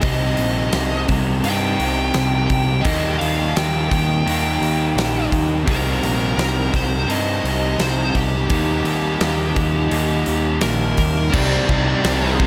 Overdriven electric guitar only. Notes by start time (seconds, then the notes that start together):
0.01 C3 G3 C4
0.06 D#4
1.43 C3 G3 C4 D#4
2.83 D#3 G3 A#3 D#4
4.26 D#3 G3 A#3 D#4
5.64 C3 G3 C4 D#4
7.07 C3 G3 C4
7.11 D#4
8.49 D#3 G3 A#3 D#4
9.89 D#3 G3 A#3
9.93 D#4
11.32 C3 G3 C4 D#4
11.67 C3 G3 C4 D#4
12.02 C3 G3 C4 D#4
12.21 G3 C4 D#4
12.38 C3 G3 C4 D#4